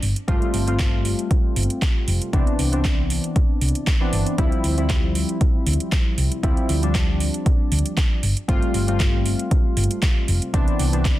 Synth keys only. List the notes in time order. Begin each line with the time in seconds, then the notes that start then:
0.28 G3 A3 C4 F4
0.67 G3 A3 C4 F4
2.33 E3 B3 C4 D4
2.72 E3 B3 C4 D4
4.00 E3 B3 C4 D4
4.38 F3 G3 C4 E4
4.77 F3 G3 C4 E4
6.43 F3 G3 C4 E4
6.82 F3 G3 C4 D4
8.48 G3 A3 C4 F4
8.87 G3 A3 C4 F4
10.53 E3 B3 C4 D4
10.92 E3 B3 C4 D4